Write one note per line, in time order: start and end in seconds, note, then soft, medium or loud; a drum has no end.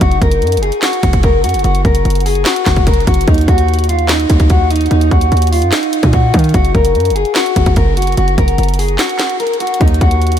0.01 0.21 F#1 loud
0.01 0.19 F#4 medium
0.01 kick loud
0.01 closed hi-hat medium
0.12 closed hi-hat medium
0.22 0.43 F#1 loud
0.22 0.60 A#4 medium
0.22 kick medium
0.22 closed hi-hat medium
0.32 closed hi-hat medium
0.42 0.59 F#2 loud
0.42 closed hi-hat soft
0.47 closed hi-hat medium
0.52 closed hi-hat medium
0.57 0.72 F#1 loud
0.57 closed hi-hat medium
0.62 0.80 G#4 medium
0.62 closed hi-hat medium
0.72 closed hi-hat medium
0.82 1.21 F#4 medium
0.82 snare loud
0.82 clap loud
0.82 closed hi-hat medium
0.93 closed hi-hat medium
1.03 1.45 F#1 loud
1.03 kick medium
1.03 closed hi-hat medium
1.13 kick medium
1.13 closed hi-hat medium
1.23 1.41 A#4 medium
1.23 kick loud
1.23 closed hi-hat medium
1.44 1.56 F#2 loud
1.44 1.62 F#4 medium
1.44 closed hi-hat medium
1.49 closed hi-hat medium
1.54 1.64 F#1 loud
1.54 closed hi-hat medium
1.59 closed hi-hat soft
1.64 1.84 F#1 loud
1.64 1.82 F#4 medium
1.64 closed hi-hat medium
1.75 closed hi-hat medium
1.85 2.04 F#1 loud
1.85 2.23 A#4 medium
1.85 kick loud
1.85 closed hi-hat medium
1.95 closed hi-hat medium
2.05 2.44 F#1 loud
2.05 closed hi-hat medium
2.10 closed hi-hat medium
2.15 closed hi-hat medium
2.20 closed hi-hat medium
2.26 2.43 G#4 medium
2.26 open hi-hat medium
2.35 closed hi-hat medium
2.45 2.84 F#4 medium
2.45 snare loud
2.45 clap loud
2.45 closed hi-hat medium
2.56 closed hi-hat medium
2.66 3.06 F#1 loud
2.66 kick medium
2.66 snare medium
2.66 clap medium
2.66 closed hi-hat medium
2.76 kick medium
2.76 closed hi-hat medium
2.87 3.05 A#4 medium
2.87 kick loud
2.87 closed hi-hat medium
2.94 closed hi-hat medium
3.00 closed hi-hat soft
3.07 3.27 F#1 loud
3.07 3.25 F#4 medium
3.07 kick medium
3.07 closed hi-hat medium
3.14 closed hi-hat medium
3.21 closed hi-hat medium
3.28 3.47 D#2 loud
3.28 3.46 D#4 medium
3.28 kick loud
3.28 closed hi-hat medium
3.34 closed hi-hat medium
3.38 closed hi-hat medium
3.41 closed hi-hat soft
3.48 4.26 D#2 loud
3.48 3.87 F#4 medium
3.48 kick loud
3.48 closed hi-hat medium
3.58 closed hi-hat medium
3.68 closed hi-hat soft
3.74 closed hi-hat medium
3.79 closed hi-hat medium
3.84 closed hi-hat medium
3.89 4.07 F4 medium
3.89 closed hi-hat medium
3.99 closed hi-hat medium
4.09 4.48 D#4 medium
4.09 snare loud
4.09 clap loud
4.09 closed hi-hat medium
4.20 closed hi-hat medium
4.30 4.89 D#2 loud
4.30 kick medium
4.30 closed hi-hat medium
4.40 kick loud
4.40 closed hi-hat medium
4.50 4.68 F#4 medium
4.50 kick loud
4.50 closed hi-hat medium
4.71 4.88 D#4 medium
4.71 closed hi-hat medium
4.76 closed hi-hat medium
4.81 closed hi-hat medium
4.86 closed hi-hat soft
4.91 5.11 D#2 loud
4.91 5.09 D#4 medium
4.91 closed hi-hat medium
5.01 closed hi-hat medium
5.11 5.31 D#2 loud
5.11 5.50 F#4 medium
5.11 kick medium
5.11 closed hi-hat medium
5.21 closed hi-hat medium
5.32 5.64 D#2 loud
5.32 closed hi-hat soft
5.37 closed hi-hat medium
5.42 closed hi-hat medium
5.47 closed hi-hat medium
5.52 5.70 F4 medium
5.52 open hi-hat medium
5.62 5.72 F#2 loud
5.62 closed hi-hat medium
5.72 6.11 D#4 medium
5.72 snare loud
5.72 clap loud
5.72 closed hi-hat medium
5.83 closed hi-hat medium
5.93 closed hi-hat medium
6.03 6.33 A#2 loud
6.03 kick loud
6.03 closed hi-hat medium
6.13 6.31 F#4 medium
6.13 kick medium
6.13 closed hi-hat medium
6.34 6.53 D#3 loud
6.34 6.52 D#4 medium
6.34 kick loud
6.34 closed hi-hat medium
6.39 closed hi-hat medium
6.44 closed hi-hat medium
6.49 closed hi-hat soft
6.54 6.74 F#1 loud
6.54 6.72 F#4 medium
6.54 kick loud
6.54 closed hi-hat medium
6.65 closed hi-hat medium
6.75 6.97 F#1 loud
6.75 7.13 A#4 medium
6.75 kick loud
6.75 closed hi-hat medium
6.85 closed hi-hat medium
6.95 7.12 F#2 loud
6.95 closed hi-hat soft
7.00 closed hi-hat medium
7.05 closed hi-hat medium
7.10 7.25 F#1 loud
7.10 closed hi-hat medium
7.15 7.33 G#4 medium
7.15 closed hi-hat medium
7.25 closed hi-hat medium
7.35 7.74 F#4 medium
7.35 snare loud
7.35 clap loud
7.35 closed hi-hat medium
7.46 closed hi-hat medium
7.56 7.66 F#1 loud
7.56 kick medium
7.56 closed hi-hat medium
7.66 7.76 F#1 loud
7.66 kick loud
7.66 closed hi-hat medium
7.76 8.16 F#1 loud
7.76 7.95 A#4 medium
7.76 kick loud
7.76 closed hi-hat medium
7.97 8.15 F#4 medium
7.97 closed hi-hat medium
8.02 closed hi-hat medium
8.07 closed hi-hat medium
8.12 closed hi-hat soft
8.17 8.37 F#1 loud
8.17 8.35 F#4 medium
8.17 closed hi-hat medium
8.28 closed hi-hat medium
8.38 8.57 F#1 loud
8.38 8.76 A#4 medium
8.38 kick medium
8.38 closed hi-hat medium
8.48 closed hi-hat medium
8.58 8.97 F#1 loud
8.58 closed hi-hat medium
8.63 closed hi-hat medium
8.69 closed hi-hat medium
8.74 closed hi-hat medium
8.79 8.97 G#4 medium
8.79 open hi-hat medium
8.88 closed hi-hat medium
8.99 9.38 F#4 medium
8.99 snare loud
8.99 clap loud
8.99 closed hi-hat medium
9.09 closed hi-hat medium
9.19 snare medium
9.19 clap medium
9.19 closed hi-hat medium
9.30 closed hi-hat medium
9.40 9.58 A#4 medium
9.40 closed hi-hat medium
9.47 closed hi-hat medium
9.54 closed hi-hat soft
9.60 9.78 F#4 medium
9.60 closed hi-hat medium
9.67 closed hi-hat medium
9.74 closed hi-hat medium
9.81 10.00 D#2 loud
9.81 9.99 D#4 medium
9.81 kick loud
9.81 closed hi-hat medium
9.88 closed hi-hat medium
9.94 closed hi-hat soft
10.01 10.39 D#2 loud
10.01 10.39 F#4 medium
10.01 kick medium
10.01 closed hi-hat medium
10.11 closed hi-hat medium
10.22 closed hi-hat soft
10.27 closed hi-hat medium
10.32 closed hi-hat medium